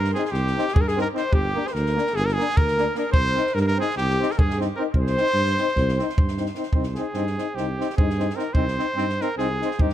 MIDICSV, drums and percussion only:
0, 0, Header, 1, 2, 480
1, 0, Start_track
1, 0, Key_signature, -3, "minor"
1, 0, Tempo, 402145
1, 1574, Time_signature, 9, 3, 24, 8
1, 11863, End_track
2, 0, Start_track
2, 0, Title_t, "Drums"
2, 50, Note_on_c, 9, 38, 31
2, 169, Note_off_c, 9, 38, 0
2, 181, Note_on_c, 9, 38, 36
2, 300, Note_off_c, 9, 38, 0
2, 301, Note_on_c, 9, 38, 29
2, 407, Note_off_c, 9, 38, 0
2, 407, Note_on_c, 9, 38, 30
2, 527, Note_off_c, 9, 38, 0
2, 565, Note_on_c, 9, 38, 30
2, 684, Note_off_c, 9, 38, 0
2, 701, Note_on_c, 9, 38, 35
2, 816, Note_off_c, 9, 38, 0
2, 816, Note_on_c, 9, 38, 32
2, 907, Note_on_c, 9, 36, 117
2, 936, Note_off_c, 9, 38, 0
2, 1026, Note_off_c, 9, 36, 0
2, 1051, Note_on_c, 9, 38, 29
2, 1170, Note_off_c, 9, 38, 0
2, 1177, Note_on_c, 9, 38, 31
2, 1296, Note_off_c, 9, 38, 0
2, 1392, Note_on_c, 9, 38, 34
2, 1512, Note_off_c, 9, 38, 0
2, 1583, Note_on_c, 9, 36, 89
2, 1702, Note_off_c, 9, 36, 0
2, 1992, Note_on_c, 9, 38, 29
2, 2091, Note_off_c, 9, 38, 0
2, 2091, Note_on_c, 9, 38, 30
2, 2210, Note_off_c, 9, 38, 0
2, 2222, Note_on_c, 9, 38, 27
2, 2341, Note_off_c, 9, 38, 0
2, 2365, Note_on_c, 9, 38, 33
2, 2470, Note_off_c, 9, 38, 0
2, 2470, Note_on_c, 9, 38, 30
2, 2582, Note_off_c, 9, 38, 0
2, 2582, Note_on_c, 9, 38, 33
2, 2701, Note_off_c, 9, 38, 0
2, 2728, Note_on_c, 9, 38, 32
2, 2848, Note_off_c, 9, 38, 0
2, 2866, Note_on_c, 9, 38, 35
2, 2981, Note_off_c, 9, 38, 0
2, 2981, Note_on_c, 9, 38, 35
2, 3071, Note_on_c, 9, 36, 126
2, 3100, Note_off_c, 9, 38, 0
2, 3190, Note_off_c, 9, 36, 0
2, 3195, Note_on_c, 9, 38, 29
2, 3315, Note_off_c, 9, 38, 0
2, 3317, Note_on_c, 9, 38, 32
2, 3436, Note_off_c, 9, 38, 0
2, 3525, Note_on_c, 9, 38, 33
2, 3644, Note_off_c, 9, 38, 0
2, 3743, Note_on_c, 9, 36, 105
2, 3862, Note_off_c, 9, 36, 0
2, 4026, Note_on_c, 9, 38, 34
2, 4137, Note_off_c, 9, 38, 0
2, 4137, Note_on_c, 9, 38, 29
2, 4256, Note_off_c, 9, 38, 0
2, 4262, Note_on_c, 9, 38, 34
2, 4382, Note_off_c, 9, 38, 0
2, 4393, Note_on_c, 9, 38, 28
2, 4512, Note_off_c, 9, 38, 0
2, 4551, Note_on_c, 9, 38, 36
2, 4657, Note_off_c, 9, 38, 0
2, 4657, Note_on_c, 9, 38, 26
2, 4746, Note_off_c, 9, 38, 0
2, 4746, Note_on_c, 9, 38, 30
2, 4865, Note_off_c, 9, 38, 0
2, 4899, Note_on_c, 9, 38, 29
2, 5019, Note_off_c, 9, 38, 0
2, 5044, Note_on_c, 9, 38, 35
2, 5138, Note_off_c, 9, 38, 0
2, 5138, Note_on_c, 9, 38, 32
2, 5238, Note_on_c, 9, 36, 106
2, 5257, Note_off_c, 9, 38, 0
2, 5357, Note_off_c, 9, 36, 0
2, 5375, Note_on_c, 9, 38, 30
2, 5494, Note_off_c, 9, 38, 0
2, 5504, Note_on_c, 9, 38, 29
2, 5624, Note_off_c, 9, 38, 0
2, 5898, Note_on_c, 9, 36, 77
2, 6017, Note_off_c, 9, 36, 0
2, 6048, Note_on_c, 9, 38, 26
2, 6168, Note_off_c, 9, 38, 0
2, 6173, Note_on_c, 9, 38, 31
2, 6286, Note_off_c, 9, 38, 0
2, 6286, Note_on_c, 9, 38, 25
2, 6390, Note_off_c, 9, 38, 0
2, 6390, Note_on_c, 9, 38, 26
2, 6510, Note_off_c, 9, 38, 0
2, 6530, Note_on_c, 9, 38, 25
2, 6649, Note_off_c, 9, 38, 0
2, 6654, Note_on_c, 9, 38, 30
2, 6774, Note_off_c, 9, 38, 0
2, 6780, Note_on_c, 9, 38, 24
2, 6886, Note_on_c, 9, 36, 63
2, 6889, Note_off_c, 9, 38, 0
2, 6889, Note_on_c, 9, 38, 29
2, 7006, Note_off_c, 9, 36, 0
2, 7008, Note_off_c, 9, 38, 0
2, 7026, Note_on_c, 9, 38, 30
2, 7145, Note_off_c, 9, 38, 0
2, 7152, Note_on_c, 9, 38, 33
2, 7272, Note_off_c, 9, 38, 0
2, 7275, Note_on_c, 9, 38, 27
2, 7375, Note_on_c, 9, 36, 100
2, 7394, Note_off_c, 9, 38, 0
2, 7494, Note_off_c, 9, 36, 0
2, 7495, Note_on_c, 9, 38, 27
2, 7607, Note_off_c, 9, 38, 0
2, 7607, Note_on_c, 9, 38, 30
2, 7712, Note_off_c, 9, 38, 0
2, 7712, Note_on_c, 9, 38, 25
2, 7815, Note_off_c, 9, 38, 0
2, 7815, Note_on_c, 9, 38, 29
2, 7915, Note_off_c, 9, 38, 0
2, 7915, Note_on_c, 9, 38, 23
2, 8029, Note_on_c, 9, 36, 81
2, 8034, Note_off_c, 9, 38, 0
2, 8148, Note_off_c, 9, 36, 0
2, 8156, Note_on_c, 9, 38, 26
2, 8276, Note_off_c, 9, 38, 0
2, 8294, Note_on_c, 9, 38, 26
2, 8414, Note_off_c, 9, 38, 0
2, 8520, Note_on_c, 9, 38, 27
2, 8639, Note_off_c, 9, 38, 0
2, 8675, Note_on_c, 9, 38, 21
2, 8794, Note_off_c, 9, 38, 0
2, 8814, Note_on_c, 9, 38, 29
2, 8933, Note_off_c, 9, 38, 0
2, 9039, Note_on_c, 9, 38, 27
2, 9159, Note_off_c, 9, 38, 0
2, 9317, Note_on_c, 9, 38, 32
2, 9430, Note_off_c, 9, 38, 0
2, 9430, Note_on_c, 9, 38, 26
2, 9528, Note_on_c, 9, 36, 96
2, 9550, Note_off_c, 9, 38, 0
2, 9647, Note_off_c, 9, 36, 0
2, 9667, Note_on_c, 9, 38, 24
2, 9783, Note_off_c, 9, 38, 0
2, 9783, Note_on_c, 9, 38, 26
2, 9902, Note_off_c, 9, 38, 0
2, 9907, Note_on_c, 9, 38, 24
2, 10014, Note_off_c, 9, 38, 0
2, 10014, Note_on_c, 9, 38, 28
2, 10133, Note_off_c, 9, 38, 0
2, 10202, Note_on_c, 9, 36, 80
2, 10322, Note_off_c, 9, 36, 0
2, 10358, Note_on_c, 9, 38, 27
2, 10478, Note_off_c, 9, 38, 0
2, 10494, Note_on_c, 9, 38, 28
2, 10614, Note_off_c, 9, 38, 0
2, 10719, Note_on_c, 9, 38, 26
2, 10838, Note_off_c, 9, 38, 0
2, 10856, Note_on_c, 9, 38, 25
2, 10975, Note_off_c, 9, 38, 0
2, 10993, Note_on_c, 9, 38, 27
2, 11112, Note_off_c, 9, 38, 0
2, 11209, Note_on_c, 9, 38, 27
2, 11328, Note_off_c, 9, 38, 0
2, 11480, Note_on_c, 9, 38, 30
2, 11591, Note_off_c, 9, 38, 0
2, 11591, Note_on_c, 9, 38, 24
2, 11690, Note_on_c, 9, 36, 90
2, 11710, Note_off_c, 9, 38, 0
2, 11809, Note_off_c, 9, 36, 0
2, 11810, Note_on_c, 9, 38, 22
2, 11863, Note_off_c, 9, 38, 0
2, 11863, End_track
0, 0, End_of_file